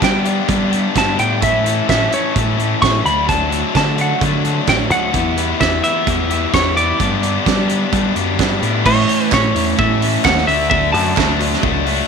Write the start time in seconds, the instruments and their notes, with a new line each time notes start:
0.00 overdriven electric guitar G2 D3 G3 B3 D4, picked electric bass G3, distorted electric guitar G4, clean electric guitar G5, kick, snare, closed hi-hat
0.24 overdriven electric guitar G2 D3 G3 B3 D4, distorted electric guitar G4, closed hi-hat
0.48 overdriven electric guitar G2 D3 G3 B3 D4, picked electric bass G3, distorted electric guitar G4, kick, closed hi-hat
0.72 overdriven electric guitar G2 D3 G3 B3 D4, distorted electric guitar G4, closed hi-hat
0.95 overdriven electric guitar G2 D3 G3 B3 D4, picked electric bass G2, distorted electric guitar G4, clean electric guitar A5, kick, snare, closed hi-hat
1.18 overdriven electric guitar G2 D3 G3 B3 D4, picked electric bass A2, distorted electric guitar G4, clean electric guitar G5, closed hi-hat
1.41 overdriven electric guitar A2 E3 A3 C#4 E4, picked electric bass A2, distorted electric guitar A4, clean electric guitar E5, kick, closed hi-hat
1.65 overdriven electric guitar A2 E3 A3 C#4 E4, distorted electric guitar A4, closed hi-hat
1.88 overdriven electric guitar A2 E3 A3 C#4 E4, picked electric bass A2, distorted electric guitar A4, clean electric guitar E5, kick, snare, closed hi-hat
2.11 overdriven electric guitar A2 E3 A3 C#4 E4, distorted electric guitar A4, clean electric guitar C#5, closed hi-hat
2.35 overdriven electric guitar A2 E3 A3 C#4 E4, picked electric bass A2, distorted electric guitar A4, kick, closed hi-hat
2.58 overdriven electric guitar A2 E3 A3 C#4 E4, distorted electric guitar A4, closed hi-hat
2.82 overdriven electric guitar A2 E3 A3 C#4 E4, picked electric bass A2, distorted electric guitar A4, clean electric guitar C#6, kick, snare, closed hi-hat
3.04 picked electric bass D2, overdriven electric guitar D3 A3 D4 F#4, distorted electric guitar F#3, clean electric guitar B5, closed hi-hat
3.27 overdriven electric guitar D3 A3 D4 F#4, distorted electric guitar F#3, clean electric guitar A5, kick, closed hi-hat
3.50 overdriven electric guitar D3 A3 D4 F#4, distorted electric guitar F#3, closed hi-hat
3.74 overdriven electric guitar D3 A3 D4 F#4, picked electric bass D3, distorted electric guitar F#3, clean electric guitar A5, kick, snare, closed hi-hat
3.97 overdriven electric guitar D3 A3 D4 F#4, distorted electric guitar F#3, closed hi-hat
4.01 clean electric guitar F#5
4.20 overdriven electric guitar D3 A3 D4 F#4, picked electric bass D3, distorted electric guitar F#3, kick, closed hi-hat
4.44 overdriven electric guitar D3 A3 D4 F#4, distorted electric guitar F#3, closed hi-hat
4.67 picked electric bass A1, overdriven electric guitar D3 A3 D4 F#4, distorted electric guitar F#3, clean electric guitar G5, kick, snare, closed hi-hat
4.90 picked electric bass D2, overdriven electric guitar D3 A3 D4 F#4, distorted electric guitar F#3, clean electric guitar F#5, closed hi-hat
5.13 picked electric bass E2, overdriven electric guitar E3 G3 B3 E4, distorted electric guitar G4, kick, closed hi-hat
5.37 overdriven electric guitar E3 G3 B3 E4, distorted electric guitar G4, closed hi-hat
5.59 picked electric bass E2, overdriven electric guitar E3 G3 B3 E4, distorted electric guitar G4, clean electric guitar E5, kick, snare, closed hi-hat
5.84 overdriven electric guitar E3 G3 B3 E4, distorted electric guitar G4, clean electric guitar E5, closed hi-hat
6.07 picked electric bass E2, overdriven electric guitar E3 G3 B3 E4, distorted electric guitar G4, kick, closed hi-hat
6.30 overdriven electric guitar E3 G3 B3 E4, distorted electric guitar G4, closed hi-hat
6.53 picked electric bass E2, overdriven electric guitar E3 G3 B3 E4, distorted electric guitar G4, clean electric guitar C#5, kick, snare, closed hi-hat
6.77 overdriven electric guitar E3 G3 B3 E4, distorted electric guitar G4, clean electric guitar D5, closed hi-hat
6.98 picked electric bass G2, overdriven electric guitar G2 D3 G3, distorted electric guitar B3 G4, kick, closed hi-hat
7.02 overdriven electric guitar B3 D4
7.23 overdriven electric guitar G2 D3 G3 B3 D4, distorted electric guitar G4, closed hi-hat
7.46 overdriven electric guitar G2 D3 G3 B3 D4, picked electric bass G3, distorted electric guitar G4, kick, snare, closed hi-hat
7.69 overdriven electric guitar G2 D3 G3 B3 D4, distorted electric guitar G4, closed hi-hat
7.92 overdriven electric guitar G2 D3 G3 B3 D4, picked electric bass G3, distorted electric guitar G4, kick, closed hi-hat
8.15 picked electric bass F#2, overdriven electric guitar G2 D3 G3 B3 D4, distorted electric guitar G4, closed hi-hat
8.37 overdriven electric guitar G2 D3 G3 B3 D4, picked electric bass G2, distorted electric guitar G4, kick, snare, closed hi-hat
8.61 overdriven electric guitar G2 D3 G3 B3 D4, picked electric bass A2, distorted electric guitar G4, closed hi-hat
8.84 overdriven electric guitar A2, picked electric bass A2, distorted electric guitar E3 A3 C#4, clean electric guitar C#5, kick, crash
9.06 overdriven electric guitar A3, distorted electric guitar C#4, open hi-hat
9.30 picked electric bass A2, distorted electric guitar E3 A3, overdriven electric guitar C#4, clean electric guitar C#5, kick, snare, clap
9.53 picked electric bass E2, overdriven electric guitar A3, distorted electric guitar C#4, open hi-hat
9.77 picked electric bass A2, distorted electric guitar E3 A3 C#4, overdriven electric guitar E4, clean electric guitar E5, kick
10.01 distorted electric guitar A3, overdriven electric guitar C#4, open hi-hat
10.23 picked electric bass D#2, distorted electric guitar E3 C#4, overdriven electric guitar A3, clean electric guitar F#5, kick, snare, clap
10.38 snare
10.47 picked electric bass D2, overdriven electric guitar D3, distorted electric guitar A3 D4 F#4, clean electric guitar E5, open hi-hat
10.70 overdriven electric guitar D3, distorted electric guitar A3 D4 F#4, clean electric guitar E5, kick
10.92 picked electric bass F#2, overdriven electric guitar F#3, distorted electric guitar D4 F#4, clean electric guitar A5, open hi-hat
11.16 picked electric bass D2, overdriven electric guitar A3, distorted electric guitar D4 F#4, kick, snare, clap
11.39 overdriven electric guitar F#3, distorted electric guitar D4 F#4, open hi-hat
11.54 snare
11.62 picked electric bass C#2, distorted electric guitar A3 D4 F#4, overdriven electric guitar E4, kick
11.85 overdriven electric guitar A3, distorted electric guitar D4 F#4, open hi-hat